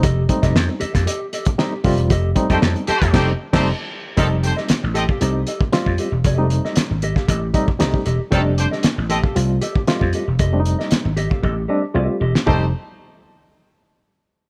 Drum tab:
CC |----------------|--------x--x----|----------------|----------------|
HH |x-xx--xxx-xx--ox|x-xx-xxx--------|x-x-x-x-x-x-x-x-|x-x-x-x-x-x-x-x-|
SD |---oo--o----o---|---oo--oo--o----|---oo-------o---|---oo--o----o---|
FT |----------------|----------------|----------------|----------------|
BD |o-oo---o---o--o-|o-oo---oo--o----|o------o---o-o--|o------oo-oo-o--|

CC |----------------|----------------|----------------|
HH |x-x-x-x-x-x-x-x-|x-x-x-x---------|----------------|
SD |---oo-------o---|---oo----------o|----------------|
FT |----------------|----------------|o---------------|
BD |o------o---o-o--|o------oo-------|o---------------|